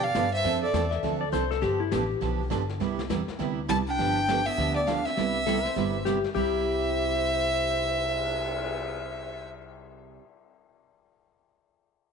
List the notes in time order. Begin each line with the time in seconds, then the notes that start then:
Already playing: B2
0.04 D5 F5
0.14 G2 D3 F3 B3 D4 G4, snare, hi-hat pedal
0.33 C5 E5
0.44 F2 F3 C4 D4 A4, brush sweep, snare
0.62 A4 D5
0.73 E2 F3 C4 D4 A4, snare, hi-hat pedal
0.91 E5, snare
1.03 D2 F3 C4 D4 A4, brush sweep, snare
1.21 D5
1.32 C2 F3 C4 D4 A4 C5, snare, hi-hat pedal
1.51 A4, snare
1.61 G1 D3 F3 B3 D4 G4, brush sweep, snare
1.80 E4
1.91 A1 D3 F3 B3 D4 G4, snare, hi-hat pedal
2.21 B1 D3 F3 B3 D4 G4, brush sweep, snare
2.50 G1 D3 F3 B3 D4 G4, snare, hi-hat pedal
2.69 snare
2.80 C2 C3 G3 B3 E4 G4, brush sweep, snare
2.99 snare
3.09 E2 C3 G3 B3 E4 G4, snare, hi-hat pedal
3.28 muted upright bass stroke, snare
3.39 D2 C3 G3 B3 E4 G4, brush sweep, snare
3.68 C2 C3 G3 B3 E4 G4 A5, snare, hi-hat pedal
3.88 D4 G5
3.98 G1 D3 F3 B3 D4 G4, brush sweep, snare
4.28 D3 F3 B3 D4 G4, snare, hi-hat pedal
4.46 B3 E5, snare
4.57 D2 D3 F3 B3 D4 G4, brush sweep, snare
4.76 B3 D5
4.87 D3 F3 B3 D4 G4 F5, snare, hi-hat pedal
5.05 C4 E5, snare
5.17 C2 C3 G3 B3 E4 G4, brush sweep, snare
5.46 C3 G3 B3 E4 G4 A4, snare, hi-hat pedal
5.65 C5, snare
5.75 G1 C3 G3 B3 E4 G4, brush sweep, snare
6.05 C3 G3 B3 E4 G4, snare, hi-hat pedal
6.24 snare
6.34 C2 C3 G3 E4 G4 C5 E5, kick, crash
6.53 cymbal swell